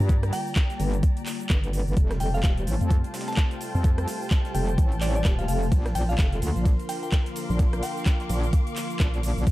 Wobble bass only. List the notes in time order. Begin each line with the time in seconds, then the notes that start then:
0.00 G2
0.80 G1
1.50 G1
1.87 G1
1.97 F1
2.20 F1
2.44 D#1
2.67 A1
2.81 F2
3.75 F2
4.55 F1
4.78 A1
5.25 D#1
5.48 F1
5.72 A#1
5.95 A#1
6.19 F1
6.42 D2
6.56 A#1
7.50 A#1
8.30 A#1
9.00 A#1
9.37 A#1
9.47 D2